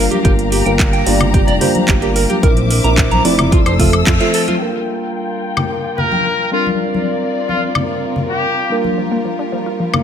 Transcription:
0.00 0.21 G3 medium
0.00 0.22 A#3 medium
0.00 0.22 D4 medium
0.00 0.22 F4 medium
0.00 2.41 G4 medium
0.00 0.22 A#4 medium
0.00 2.39 F5 medium
0.00 2.41 A#5 medium
0.11 0.18 G4 loud
0.11 closed hi-hat soft
0.11 high conga medium
0.24 0.62 G1 medium
0.24 0.63 G3 medium
0.24 0.63 A#3 medium
0.24 0.63 D4 medium
0.24 0.63 F4 medium
0.24 0.32 G4 medium
0.24 0.63 A#4 medium
0.24 kick loud
0.24 closed hi-hat medium
0.39 closed hi-hat soft
0.52 0.63 G4 medium
0.52 open hi-hat medium
0.66 1.03 G1 medium
0.66 1.04 G3 medium
0.66 1.04 A#3 medium
0.66 1.04 D4 medium
0.66 1.04 F4 medium
0.66 1.04 A#4 medium
0.66 0.70 G5 medium
0.66 closed hi-hat soft
0.79 kick loud
0.79 clap loud
0.79 closed hi-hat medium
0.93 1.03 G5 medium
0.93 closed hi-hat soft
1.06 1.44 G1 loud
1.06 1.58 G3 loud
1.06 1.58 A#3 medium
1.06 1.58 D4 medium
1.06 1.58 F4 medium
1.06 1.58 D5 loud
1.06 open hi-hat loud
1.20 closed hi-hat soft
1.20 low conga medium
1.20 high woodblock medium
1.34 1.41 G4 medium
1.34 kick loud
1.34 closed hi-hat medium
1.47 1.59 F1 medium
1.47 1.54 D5 medium
1.47 closed hi-hat soft
1.60 1.99 G3 medium
1.60 1.99 A#3 medium
1.60 1.99 D4 medium
1.60 1.99 F4 medium
1.60 1.72 G4 medium
1.60 1.99 C5 loud
1.60 open hi-hat medium
1.60 low conga medium
1.75 closed hi-hat soft
1.75 high conga medium
1.88 2.26 G1 medium
1.88 1.93 G4 medium
1.88 kick loud
1.88 clap loud
1.88 closed hi-hat medium
2.02 2.40 G3 medium
2.02 2.40 A#3 medium
2.02 2.40 D4 medium
2.02 2.40 F4 medium
2.02 2.09 G4 loud
2.02 2.40 A#4 medium
2.02 closed hi-hat soft
2.16 2.23 A#4 medium
2.16 open hi-hat medium
2.30 2.36 G4 loud
2.30 closed hi-hat soft
2.30 high conga medium
2.43 2.80 A#1 loud
2.43 2.81 C4 medium
2.43 2.81 D4 medium
2.43 2.81 E4 medium
2.43 2.50 A#4 medium
2.43 2.81 A#4 medium
2.43 3.51 C5 medium
2.43 3.51 E5 medium
2.43 3.51 D6 medium
2.43 kick loud
2.43 closed hi-hat medium
2.57 closed hi-hat soft
2.57 high conga medium
2.71 2.81 A#4 medium
2.71 open hi-hat loud
2.84 3.21 A#1 medium
2.84 3.22 C4 medium
2.84 3.22 D4 medium
2.84 3.22 E4 medium
2.84 3.22 A#4 medium
2.84 2.88 A#5 medium
2.84 closed hi-hat soft
2.98 kick loud
2.98 clap loud
2.98 closed hi-hat medium
3.11 3.22 A#5 medium
3.11 closed hi-hat soft
3.11 high conga medium
3.24 3.62 F1 medium
3.24 3.76 F3 loud
3.24 3.76 A3 medium
3.24 3.76 C4 medium
3.24 3.76 E4 medium
3.24 3.76 D5 loud
3.24 open hi-hat loud
3.39 closed hi-hat soft
3.39 low conga medium
3.39 high woodblock medium
3.52 3.59 F4 medium
3.52 4.60 A4 medium
3.52 4.60 E6 medium
3.52 kick loud
3.52 closed hi-hat medium
3.66 4.03 F1 medium
3.66 3.73 C5 medium
3.66 closed hi-hat soft
3.66 high woodblock medium
3.79 4.17 F3 medium
3.79 4.17 A3 medium
3.79 4.17 C4 medium
3.79 3.90 F4 medium
3.79 4.18 A4 medium
3.79 4.17 E5 medium
3.79 kick medium
3.79 open hi-hat loud
3.79 low conga medium
3.93 high woodblock medium
4.07 4.18 F2 medium
4.07 4.11 F4 medium
4.07 kick loud
4.07 clap loud
4.07 closed hi-hat medium
4.20 4.58 F3 medium
4.20 4.58 A3 medium
4.20 4.58 C4 medium
4.20 4.28 F4 loud
4.20 4.58 A4 loud
4.20 4.58 E5 medium
4.20 closed hi-hat soft
4.34 4.41 A4 loud
4.34 open hi-hat loud
4.48 4.55 F4 loud
4.48 closed hi-hat soft
4.48 high conga medium
4.60 6.48 G3 medium
4.60 6.49 A#3 medium
4.60 6.49 D4 medium
4.60 6.49 F4 medium
4.60 6.51 F4 medium
4.60 6.51 A#4 medium
4.60 6.49 A#4 medium
4.60 6.51 G5 medium
5.57 low conga medium
5.57 high woodblock medium
5.98 6.50 A#4 medium
5.98 low conga medium
6.12 high conga medium
6.51 8.67 G3 medium
6.51 8.67 C4 medium
6.51 8.68 C4 medium
6.51 8.67 D4 medium
6.51 10.03 F4 medium
6.51 6.68 F4 medium
6.51 8.68 F4 medium
6.51 10.03 A#4 medium
6.51 8.68 A#4 medium
6.51 8.68 D5 medium
6.67 high conga medium
6.94 high conga medium
7.48 7.63 F4 medium
7.48 high conga medium
7.75 low conga medium
7.75 high woodblock medium
8.16 low conga medium
8.30 8.76 G4 medium
8.70 10.03 G3 medium
8.70 10.03 A#3 medium
8.70 10.03 D4 medium
8.70 10.03 F4 medium
8.70 10.03 A#4 medium
8.84 high conga medium
8.98 9.04 F3 medium
9.11 9.15 A#3 medium
9.25 9.35 F3 medium
9.39 9.45 D4 medium
9.52 9.56 F3 medium
9.66 9.72 F4 medium
9.80 9.89 F3 medium
9.94 10.00 A#3 medium
9.94 low conga medium
9.94 high woodblock medium

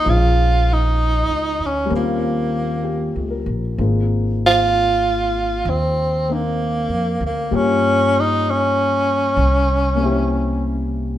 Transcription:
0.00 0.11 D#4 medium
0.05 1.26 A#1 medium
0.05 1.91 F3 soft
0.05 1.91 G#3 soft
0.05 1.92 C#4 soft
0.05 1.92 D#4 soft
0.05 1.92 C5 soft
0.10 0.75 F4 medium
0.73 1.68 D#4 medium
1.29 1.58 C#2 soft
1.60 1.89 D2 soft
1.66 1.94 C#4 medium
1.86 3.76 G3 medium
1.86 3.77 A#3 soft
1.90 3.12 D#2 medium
1.90 3.77 C4 soft
1.90 3.80 C#4 soft
1.96 3.48 A#3 medium
1.96 3.78 F4 medium
2.84 3.60 G4 soft
3.16 3.45 C#2 medium
3.30 3.98 A#4 soft
3.46 3.76 A#1 medium
3.78 5.61 G#1 medium
3.78 7.51 G#3 soft
3.78 6.27 A#3 soft
3.78 6.28 C4 soft
3.78 6.30 D#4 soft
3.78 7.51 F4 soft
4.47 5.71 F4 loud
5.65 6.85 D#2 medium
5.70 6.35 C4 medium
6.29 7.50 A#3 soft
6.29 7.52 C4 soft
6.29 7.52 D#4 soft
6.33 7.24 A#3 medium
6.89 7.18 F2 soft
7.21 7.49 D2 medium
7.27 7.58 A#3 medium
7.51 9.33 G2 medium
7.51 9.37 G3 soft
7.51 9.37 A#3 soft
7.51 9.37 C#4 soft
7.51 9.37 F4 soft
7.51 9.37 G4 medium
7.56 8.22 C#4 medium
8.20 8.52 D#4 medium
8.50 10.96 C#4 medium
9.37 11.18 C2 medium
9.95 11.18 C3 soft
9.95 11.18 A#3 medium
10.01 11.18 C#4 soft
10.01 11.18 E4 soft
10.06 11.18 G4 medium

